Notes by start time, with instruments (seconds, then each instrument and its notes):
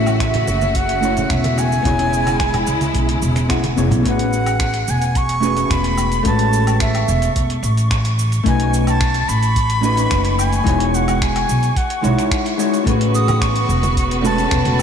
Already playing: upright bass A1, string section C#3 A3 F#4, hollow-body jazz guitar A3 C#4 E4 F#4 C#5, flute E5
0.06 muted conga, high conga, cabasa, low woodblock
0.20 flute E5, finger snap, kick, closed hi-hat, cabasa
0.34 closed hi-hat, low conga
0.47 upright bass F#1, muted conga, cabasa
0.61 high conga, cabasa
0.75 flute F#5, kick, closed hi-hat, cabasa
0.89 closed hi-hat
1.00 hollow-body jazz guitar A3 C#4 E4 F#4, muted conga, high conga, cabasa
1.05 hollow-body jazz guitar C#5
1.17 closed hi-hat, low conga, cabasa
1.24 flute F#5
1.30 upright bass E1, flute E5, finger snap, kick, closed hi-hat, cabasa
1.44 closed hi-hat, muted conga, high conga
1.58 flute G#5, cabasa, low woodblock
1.72 cabasa
1.82 upright bass E1, string section C#3 G#3 E4, hollow-body jazz guitar B3 C#4 E4 G#4, kick, closed hi-hat, high conga, cabasa
1.87 hollow-body jazz guitar C#5
1.99 closed hi-hat, muted conga
2.13 cabasa
2.26 closed hi-hat, high conga, cabasa, low woodblock
2.40 finger snap, kick, closed hi-hat, muted conga, cabasa
2.54 closed hi-hat, low conga, low woodblock
2.67 upright bass C#2, cabasa
2.81 closed hi-hat, high conga, cabasa
2.94 upright bass B1, kick, closed hi-hat, muted conga, cabasa
3.09 closed hi-hat
3.22 upright bass E1, high conga, cabasa
3.36 finger snap, closed hi-hat, muted conga, cabasa
3.49 hollow-body jazz guitar B3 C#4 E4 G#4 F#5, finger snap, kick, closed hi-hat, cabasa
3.64 closed hi-hat, high conga
3.76 upright bass E1, hollow-body jazz guitar B3 C#4 E4 G#4 C#5, cabasa
3.91 upright bass B1, closed hi-hat, muted conga, low conga, cabasa
4.02 hollow-body jazz guitar A3 C#4 F#4 G#4, synth texture C#6, kick, closed hi-hat, cabasa
4.07 hollow-body jazz guitar B4, flute F#5
4.19 closed hi-hat
4.33 cabasa
4.46 closed hi-hat, cabasa, low woodblock
4.60 finger snap, kick, closed hi-hat, cabasa
4.74 closed hi-hat
4.88 upright bass E1, flute G#5, cabasa
5.02 closed hi-hat, cabasa
5.15 flute C#6, kick, closed hi-hat, cabasa
5.29 closed hi-hat
5.40 hollow-body jazz guitar A3 C#4 F#4 G#4, cabasa
5.44 hollow-body jazz guitar B4
5.57 closed hi-hat, cabasa
5.70 upright bass E1, flute B5, finger snap, kick, closed hi-hat, cabasa
5.84 closed hi-hat
5.97 cabasa, low woodblock
6.12 closed hi-hat, cabasa
6.23 upright bass A1, hollow-body jazz guitar G#3 A3 C#4 F#4, flute A5, kick, closed hi-hat, cabasa
6.27 hollow-body jazz guitar B4
6.39 closed hi-hat
6.53 cabasa
6.67 closed hi-hat, cabasa, low woodblock
6.80 flute E5, finger snap, kick, closed hi-hat, cabasa
6.95 closed hi-hat, low woodblock
7.08 upright bass E1, cabasa
7.22 closed hi-hat, cabasa
7.36 upright bass E1, kick, closed hi-hat, cabasa
7.50 closed hi-hat
7.62 upright bass A1, cabasa
7.77 closed hi-hat, cabasa
7.91 finger snap, kick, closed hi-hat, cabasa
8.05 closed hi-hat
8.19 cabasa
8.32 closed hi-hat, cabasa
8.44 upright bass B1, hollow-body jazz guitar A3 C#4 D#4 F#4, kick, closed hi-hat, cabasa
8.48 hollow-body jazz guitar B4, flute G#5
8.60 closed hi-hat
8.74 cabasa
8.87 flute A5, closed hi-hat, cabasa, low woodblock
9.01 finger snap, kick, closed hi-hat, cabasa
9.14 closed hi-hat
9.28 upright bass A1, flute B5, cabasa
9.43 closed hi-hat, cabasa
9.56 kick, closed hi-hat, cabasa
9.70 closed hi-hat
9.81 hollow-body jazz guitar A3 C#4 D#4 F#4, cabasa
9.85 hollow-body jazz guitar B4
9.97 closed hi-hat, cabasa
10.11 upright bass F#1, finger snap, kick, closed hi-hat, cabasa
10.25 closed hi-hat
10.39 flute G#5, cabasa, low woodblock
10.53 closed hi-hat, cabasa
10.64 upright bass E1, hollow-body jazz guitar G#3 D#4 E4 F#4, kick, closed hi-hat, cabasa
10.68 hollow-body jazz guitar C#5
10.80 closed hi-hat
10.94 flute F#5, cabasa
11.08 closed hi-hat, cabasa, low woodblock
11.21 flute G#5, finger snap, kick, closed hi-hat, cabasa
11.36 closed hi-hat, low woodblock
11.49 upright bass B1, cabasa
11.63 closed hi-hat, cabasa
11.76 flute F#5, kick, closed hi-hat, cabasa
11.90 closed hi-hat
12.02 upright bass B1, hollow-body jazz guitar G#3 D#4 E4 F#4 C#5, cabasa
12.19 finger snap, closed hi-hat, cabasa
12.31 finger snap, kick, closed hi-hat, cabasa
12.46 closed hi-hat
12.57 hollow-body jazz guitar G#3 D#4 E4 F#4 C#5, cabasa
12.74 closed hi-hat, cabasa
12.84 upright bass A1, string section C#3 B3 F#4 B4, hollow-body jazz guitar A3 C#4 F#4 G#4, kick, closed hi-hat, muted conga, high conga, cabasa
12.88 hollow-body jazz guitar B4
13.01 closed hi-hat
13.15 flute D#6, cabasa
13.28 closed hi-hat, muted conga, high conga, low conga, cabasa, low woodblock
13.41 flute C#6, finger snap, kick, closed hi-hat, cabasa
13.56 closed hi-hat
13.69 upright bass E1, cabasa
13.82 closed hi-hat, muted conga, high conga, cabasa
13.96 flute C#6, kick, closed hi-hat, cabasa
14.11 closed hi-hat
14.21 hollow-body jazz guitar G#3 A3 C#4 F#4 B4, muted conga, high conga, cabasa
14.26 flute A5
14.38 closed hi-hat, cabasa
14.51 upright bass E1, finger snap, kick, closed hi-hat, cabasa
14.65 closed hi-hat, high conga
14.79 muted conga, low woodblock